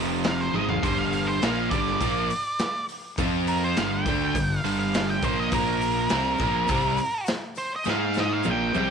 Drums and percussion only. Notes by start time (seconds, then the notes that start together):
0.24 snare, open hi-hat
0.40 snare
0.54 high tom
0.69 floor tom
0.83 kick, open hi-hat, shaker
1.12 open hi-hat, shaker
1.28 shaker
1.42 snare, open hi-hat, shaker
1.57 shaker
1.71 kick, open hi-hat, shaker
1.87 snare, shaker
2.01 kick, open hi-hat, shaker
2.16 shaker
2.30 open hi-hat, shaker
2.59 snare, open hi-hat, shaker
2.89 open hi-hat, shaker
3.18 kick, open hi-hat, shaker
3.47 open hi-hat, shaker
3.62 shaker
3.77 snare, open hi-hat, shaker
3.93 shaker
4.06 kick, open hi-hat, shaker
4.20 shaker
4.35 kick, open hi-hat, shaker
4.50 shaker
4.64 open hi-hat, shaker
4.81 shaker
4.94 snare, open hi-hat, shaker
5.10 snare
5.22 kick, open hi-hat, shaker
5.52 kick, open hi-hat, shaker
5.81 open hi-hat, shaker
5.96 shaker
6.09 snare, open hi-hat, shaker
6.24 shaker
6.38 kick, open hi-hat, shaker
6.52 shaker
6.68 kick, open hi-hat, shaker
6.83 shaker
6.97 open hi-hat, shaker
7.11 shaker
7.26 snare, open hi-hat, shaker
7.55 open hi-hat, shaker
7.84 snare, shaker
8.14 snare, shaker
8.43 high tom, shaker
8.74 high tom, shaker